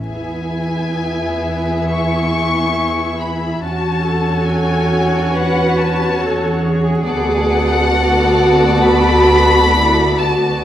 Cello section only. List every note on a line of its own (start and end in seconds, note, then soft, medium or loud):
1.89 3.60 E4 medium
3.63 4.05 F#4 medium
4.06 5.31 A4 medium
5.33 6.20 B4 medium
6.19 6.63 A4 medium
6.63 7.93 G#4 medium
7.92 9.73 F#4 medium
9.77 10.22 E4 medium
10.22 10.64 F#4 medium